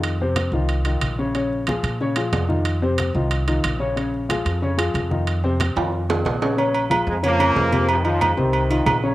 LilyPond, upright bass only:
\new Staff \with { instrumentName = "Upright bass" } { \clef bass \time 4/4 \key bes \minor \tempo 4 = 183 f,4. c,4. bes,,4~ | bes,,4. bes,4. f,4~ | f,4. c,4. bes,,4~ | bes,,4. f,4. f,4~ |
f,4. f,4. bes,,4~ | bes,,4. f,4. f,4~ | f,4. c,4. bes,,4 | }